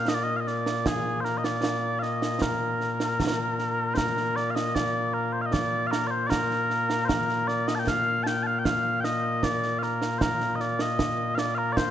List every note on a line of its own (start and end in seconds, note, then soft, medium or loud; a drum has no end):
0.00 11.91 A#2 medium
0.00 11.91 A#3 medium
0.08 0.14 D#5 loud
0.08 snare loud
0.14 0.23 D5 loud
0.23 0.36 D#5 loud
0.36 0.47 D#5 medium
0.36 0.40 F5 medium
0.47 0.87 D5 medium
0.47 snare soft
0.66 snare medium
0.86 1.21 G#4 loud
0.86 concert bass drum medium
0.86 snare loud
1.21 1.25 C5 medium
1.25 1.38 A#4 medium
1.25 snare soft
1.38 1.45 D#5 medium
1.44 1.99 D5 medium
1.44 snare medium
1.64 snare loud
1.99 2.42 D#5 medium
1.99 2.02 F5 medium
1.99 snare soft
2.22 snare medium
2.42 3.94 A#4 medium
2.42 concert bass drum medium
2.42 snare loud
2.81 snare soft
3.00 snare medium
3.20 concert bass drum medium
3.20 snare loud
3.59 snare soft
3.94 4.36 A#4 loud
3.94 3.97 C5 loud
3.94 concert bass drum medium
3.94 snare medium
4.17 snare soft
4.36 4.50 D5 loud
4.36 snare soft
4.50 4.55 F5 medium
4.55 4.75 D#5 medium
4.55 snare medium
4.75 5.14 D5 loud
4.75 concert bass drum soft
4.75 snare medium
5.14 5.33 A#4 medium
5.33 5.42 C5 medium
5.42 5.46 F5 medium
5.46 5.53 D#5 medium
5.53 5.87 D5 loud
5.53 concert bass drum medium
5.53 snare medium
5.87 5.91 F5 medium
5.91 6.07 A#4 medium
5.91 snare medium
6.07 6.27 C5 loud
6.07 6.11 D5 loud
6.27 7.05 A#4 loud
6.27 6.30 D5 loud
6.32 concert bass drum soft
6.32 snare loud
6.51 snare soft
6.70 snare soft
6.90 snare medium
7.05 7.48 A#4 loud
7.05 7.09 C5 loud
7.09 concert bass drum medium
7.09 snare loud
7.29 snare soft
7.48 7.67 D5 loud
7.48 snare soft
7.67 7.75 D#5 medium
7.67 snare medium
7.75 7.79 A5 medium
7.79 7.88 G5 medium
7.87 8.23 F5 loud
7.87 concert bass drum medium
7.87 snare medium
8.23 8.43 G5 loud
8.23 8.27 A5 loud
8.23 snare medium
8.43 8.59 F5 loud
8.43 8.47 A5 loud
8.59 8.65 G5 medium
8.65 9.00 F5 loud
8.65 concert bass drum medium
8.65 snare medium
9.00 9.04 G5 loud
9.04 9.44 D#5 loud
9.04 snare medium
9.43 9.79 D5 loud
9.43 concert bass drum medium
9.43 snare medium
9.63 snare soft
9.79 9.83 F5 medium
9.79 snare soft
9.83 10.18 A#4 medium
10.02 snare medium
10.18 10.56 A#4 loud
10.18 10.22 C5 loud
10.18 concert bass drum medium
10.18 snare loud
10.40 snare soft
10.56 10.61 D#5 medium
10.60 10.81 D5 medium
10.60 snare soft
10.79 11.35 D#5 medium
10.79 snare medium
10.99 concert bass drum medium
10.99 snare medium
11.35 11.55 D5 medium
11.35 11.39 F5 medium
11.35 snare medium
11.55 11.73 A#4 loud
11.55 11.58 F5 loud
11.73 11.77 D5 loud
11.77 11.91 C5 loud
11.77 concert bass drum medium
11.77 snare loud